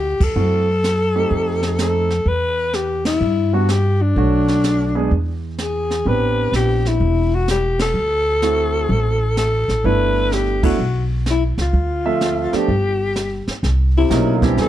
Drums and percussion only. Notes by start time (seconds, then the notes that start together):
0.21 kick, ride
0.36 brush sweep
0.84 snare, hi-hat pedal
1.31 brush sweep, kick
1.63 snare
1.79 snare, hi-hat pedal
2.10 snare
2.26 brush sweep, kick
2.73 snare, hi-hat pedal
3.05 snare, ride
3.21 brush sweep
3.69 snare, hi-hat pedal
4.16 brush sweep, kick
4.48 snare
4.64 snare, hi-hat pedal
5.11 brush sweep, kick
5.58 snare, hi-hat pedal
5.91 snare
6.06 brush sweep, kick
6.53 snare, hi-hat pedal
6.85 snare
7.00 brush sweep, kick
7.48 snare, hi-hat pedal
7.79 snare, ride
7.95 brush sweep
8.42 snare, hi-hat pedal
8.90 brush sweep, kick
9.37 snare, hi-hat pedal
9.69 snare
9.84 brush sweep, kick
10.32 snare, hi-hat pedal
10.63 kick, ride
10.79 brush sweep
11.26 snare, hi-hat pedal
11.58 snare
11.73 brush sweep, kick
12.21 snare, hi-hat pedal
12.53 snare
12.68 brush sweep, kick
13.16 snare, hi-hat pedal
13.48 snare
13.63 brush sweep, kick, snare
14.10 kick, snare, hi-hat pedal
14.42 kick, snare
14.58 brush sweep, kick, snare